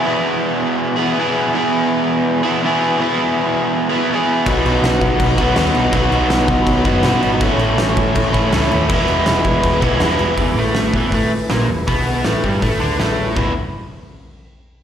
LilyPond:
<<
  \new Staff \with { instrumentName = "Transistor combo organ" } { \time 4/4 \key e \major \tempo 4 = 163 << { r1 | r1 | r1 | r1 |
r2 r8 fis''8 b''4 | r1 | r1 | r1 |
r1 | r1 | } \\ { r1 | r1 | r1 | <dis' fis' b'>1~ |
<dis' fis' b'>1 | <e' a' cis''>1 | <e' gis' b'>1 | <e' gis' b'>1~ |
<e' gis' b'>1 | <e' gis' b'>8 r2. r8 | } >> }
  \new Staff \with { instrumentName = "Overdriven electric guitar" } { \clef bass \time 4/4 \key e \major <e, b, e b e' gis'>2~ <e, b, e b e' gis'>8 <e, b, e b e' gis'>8 <e, b, e b e' gis'>4 | <e, b, e b e' gis'>2~ <e, b, e b e' gis'>8 <e, b, e b e' gis'>8 <e, b, e b e' gis'>4 | <e, b, e b e' gis'>2~ <e, b, e b e' gis'>8 <e, b, e b e' gis'>8 <e, b, e b e' gis'>4 | <b, fis b dis' fis'>2~ <b, fis b dis' fis'>8 <b, fis b dis' fis'>8 <b, fis b dis' fis'>4 |
<b, fis b dis' fis'>2~ <b, fis b dis' fis'>8 <b, fis b dis' fis'>8 <b, fis b dis' fis'>4 | <a, e a cis' e'>2~ <a, e a cis' e'>8 <a, e a cis' e'>8 <a, e a cis' e'>4 | <e, b, e gis b e'>2~ <e, b, e gis b e'>8 <e, b, e gis b e'>8 <e, b, e gis b e'>4 | <e, e>8 <a, a>4 <e, e>8 <a, a>8 r8 <ais, ais>8 e,8 |
<b, b>4 <a, a>8 <g, g>8 <a, a>8 <d d'>8 <a, a>4 | <e, b, e gis b e'>8 r2. r8 | }
  \new Staff \with { instrumentName = "Picked electric bass" } { \clef bass \time 4/4 \key e \major r1 | r1 | r1 | b,,8 b,,8 b,,8 b,,8 b,,8 b,,8 dis,8 b,,8 |
b,,8 b,,8 b,,8 b,,8 b,,8 fis,,8 b,8 gis,,8 | a,,8 a,,8 a,,8 a,,8 a,,8 a,,8 cis,8 dis,8 | e,,8 e,,8 e,,8 e,,8 e,,8 b,,8 e,8 e,,8 | e,,8 a,,4 e,,8 a,,8 r8 ais,,8 e,,8 |
b,,4 a,,8 g,,8 a,,8 d,8 a,,4 | e,,8 r2. r8 | }
  \new DrumStaff \with { instrumentName = "Drums" } \drummode { \time 4/4 r4 r4 r4 r4 | r4 r4 r4 r4 | r4 r4 r4 r4 | <cymc bd>8 cymc8 <cymc sn>8 <cymc bd>8 <cymc bd>8 <cymc bd>8 <cymc sn>16 sn16 cymc8 |
<cymc bd>8 cymc8 <cymc sn>8 <cymc bd>8 <cymc bd>8 <cymc bd>8 <cymc sn>8 cymc8 | <cymc bd>8 cymc8 <cymc sn>8 <cymc bd>8 <cymc bd>8 <cymc bd>8 <cymc sn>16 sn16 cymc8 | <cymc bd>8 cymc8 <cymc sn>8 <cymc bd>8 <cymc bd>8 <cymc bd>8 <cymc sn>16 sn16 cymc8 | <hho bd>4 <hho sn>8 bd8 <hho bd>4 <hho sn>4 |
<hho bd>4 <hho sn>8 bd8 <hho bd>4 <hho sn>4 | <cymc bd tomfh>4 r4 r4 r4 | }
>>